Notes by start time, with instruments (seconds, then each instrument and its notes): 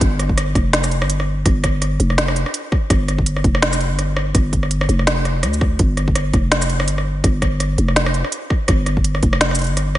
0.01 808-style bass G1, kick, closed hi-hat
0.19 cross-stick, closed hi-hat
0.29 kick
0.38 cross-stick, closed hi-hat
0.55 808-style bass F1, kick, cross-stick, closed hi-hat
0.73 snare, closed hi-hat
0.84 cross-stick, shaker
0.91 closed hi-hat
1.02 808-style bass G1, cross-stick
1.10 closed hi-hat
1.20 cross-stick
1.46 808-style bass G1, kick, cross-stick, closed hi-hat
1.64 kick, cross-stick, closed hi-hat
1.82 cross-stick, closed hi-hat
2.00 808-style bass F1, closed hi-hat
2.10 cross-stick
2.18 snare, closed hi-hat
2.28 cross-stick
2.36 closed hi-hat
2.46 cross-stick
2.54 closed hi-hat
2.72 kick, cross-stick
2.90 808-style bass G1, kick, cross-stick, closed hi-hat
3.08 cross-stick, closed hi-hat
3.18 kick
3.26 closed hi-hat
3.36 cross-stick
3.44 808-style bass F1, kick, closed hi-hat
3.55 cross-stick
3.62 snare, closed hi-hat
3.73 cross-stick, shaker
3.81 closed hi-hat
3.90 808-style bass G1
3.99 cross-stick, closed hi-hat
4.17 cross-stick
4.35 808-style bass G1, kick, cross-stick, closed hi-hat
4.53 kick, closed hi-hat
4.63 cross-stick
4.71 closed hi-hat
4.81 cross-stick
4.89 808-style bass F1, closed hi-hat
4.99 cross-stick
5.07 snare, closed hi-hat
5.25 cross-stick, closed hi-hat
5.43 808-style bass D2, cross-stick, closed hi-hat
5.53 shaker
5.61 kick, cross-stick
5.79 808-style bass G1, kick, closed hi-hat
5.97 cross-stick, closed hi-hat
6.08 kick
6.15 cross-stick, closed hi-hat
6.33 808-style bass F1, kick, cross-stick, closed hi-hat
6.52 snare, closed hi-hat
6.62 cross-stick, shaker
6.70 closed hi-hat
6.80 808-style bass G1, cross-stick
6.88 closed hi-hat
6.98 cross-stick
7.24 808-style bass G1, kick, cross-stick, closed hi-hat
7.42 kick, cross-stick, closed hi-hat
7.60 cross-stick, closed hi-hat
7.78 808-style bass F1, closed hi-hat
7.88 cross-stick
7.96 snare, closed hi-hat
8.06 cross-stick
8.14 closed hi-hat
8.24 cross-stick
8.32 closed hi-hat
8.50 kick, cross-stick
8.68 808-style bass G1, kick, cross-stick, closed hi-hat
8.86 cross-stick, closed hi-hat
8.97 kick
9.04 closed hi-hat
9.15 cross-stick
9.23 808-style bass F1, kick, closed hi-hat
9.33 cross-stick
9.41 snare, closed hi-hat
9.51 cross-stick, shaker
9.59 closed hi-hat
9.62 closed hi-hat
9.64 closed hi-hat
9.67 808-style bass G1, closed hi-hat
9.77 cross-stick, closed hi-hat
9.95 cross-stick